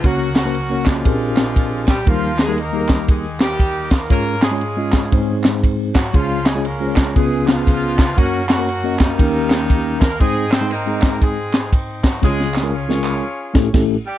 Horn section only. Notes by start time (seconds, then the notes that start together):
0.04 F#3 A#3 C#4 F#4
0.36 F#3 A#3 C#4 F#4
0.86 F3 G#3 D4 F4
1.88 G3 G4
2.07 F3 A#3 F4
2.40 G#3 G#4
2.59 A#3 D#4 G4 A#4
3.09 G#3 D#4 G#4
3.40 G3 A#3 D#4 G4
3.92 A#3 A#4
4.11 A#3 C#4 F4 A#4
4.43 G#3 C#4 F4 G#4
5.95 F#3 F#4
6.15 F3 G#3 C#4 F4
6.45 G#3 G#4
6.65 A#3 C#4 F4 A#4
7.16 G#3 B3 F4 G#4
7.47 F3 G#3 B3 F4
8.16 F#3 A#3 C#4 F#4
8.47 F#3 A#3 C#4 F#4
8.98 D#3 G3 A#3 D#4
10.00 A#3 A#4
10.19 G#3 C4 D#4 G#4
10.50 C4 C5
10.71 A#3 D#4 A#4
11.22 G#3 C4 D#4 G#4
12.04 F#3 F#4
12.23 G#3 C#4 F4 G#4
12.73 C#4 F4 G#4 C#5
14.06 G3 G4